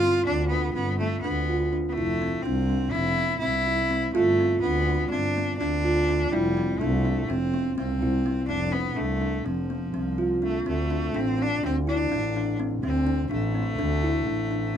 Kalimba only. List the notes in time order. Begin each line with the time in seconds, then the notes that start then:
0.03 C4
0.27 D4
0.52 D4
0.76 C4
1.01 B3
1.24 D4
1.49 F4
1.73 D4
1.98 E4
2.22 C4
2.46 D4
2.69 D4
2.95 C4
3.18 B3
3.42 C4
3.67 E4
3.91 C4
4.15 F4
4.40 C4
4.64 D4
4.89 D4
5.12 C4
5.37 B3
5.61 D4
5.84 F4
6.09 D4
6.33 E4
6.57 C4
6.81 D4
7.05 D4
7.30 C4
7.54 B3
7.78 C4
8.02 E4
8.26 C4
8.49 D4
8.73 C4
8.97 D4
9.21 D4
9.46 C4
9.70 B3
9.94 C4
10.18 F4
10.42 D4
10.66 C4
10.90 D4
11.14 D4
11.38 C4
11.63 D4
11.87 E4
12.12 D4
12.36 D4
12.59 C4
12.83 C4
13.07 D4
13.31 D4
13.55 C4
13.79 D4
14.03 E4
14.27 D4
14.51 D4